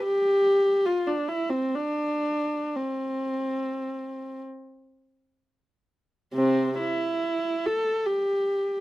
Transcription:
0.03 G4
0.86 F4
1.07 D4
1.28 E4
1.49 C4
1.75 D4
2.76 C4
6.34 C3 C4
6.79 E4
7.66 A4
8.06 G4

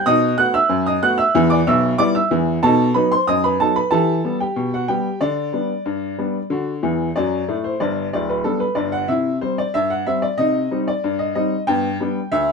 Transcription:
0.06 B2 D#4 D#5 D#6
0.38 A3 B3 F#4 F#5 F#6
0.54 E5 E6
0.69 F#2
0.86 D#5 D#6
1.03 A3 B3 F#4 F#5 F#6
1.18 E5 E6
1.35 E2 E3
1.50 D5 D6
1.67 B1 B2 E5 E6
1.98 G3 B3 E4 D5 D6
2.15 E5 E6
2.31 E2 E3
2.63 B2 D#4 A4 A5
2.94 F#3 B3 D#4 B4 B5
3.12 C5 C6
3.27 F#2 D#5 D#6
3.44 B4 B5
3.60 F#3 B3 D#4 A4 A5
3.76 B4 B5
3.91 E3 G4 A4 A5
4.24 G3 B3
4.40 G4 G5
4.56 B2
4.74 F#4 F#5
4.88 G3 B3 G4 G5
5.21 D3 D4 D5
5.53 G3 B3 D4
5.86 G2
6.18 G3 B3 D4
6.50 D3 F#4
6.83 E2 E3
7.16 F#2 F#3 D5
7.48 A2 A3
7.64 C5
7.80 G1 G2 D5
8.13 D1 D2 D5
8.29 B4
8.44 G3 B3 D4 A4
8.60 B4
8.75 G1 G2 D5
8.92 F#5
9.08 C3 E4 E5
9.41 G3 C4 C5
9.58 D5
9.74 G2 E5
9.90 F#5
10.06 G3 C4 E5
10.22 D5
10.38 C3 D#4 D#5
10.71 G3 C4 D#4
10.88 D5
11.04 G2
11.19 D#5
11.35 G3 C4 D#4 D#5
11.67 G2 B3 G5
12.00 G3 B3 D4
12.32 D2 E5

